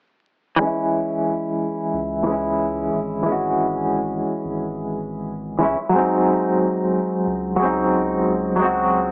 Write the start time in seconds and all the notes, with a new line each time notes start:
0.56 E3 G#3
0.62 C#4 E4
1.93 C#2
2.24 E3 G#3
2.30 C#4 E4
2.93 G#1
3.23 E3 G#3
3.29 C#4 F#4
4.45 G#1
5.59 C#2 E3 G#3 C#4
5.63 E4
5.89 F#3 G#3
5.95 C4 D#4
7.27 C#2
7.56 F#3 G#3
7.62 C4 D#4
8.27 C#2
8.56 F#3 G#3
8.62 C4 F#4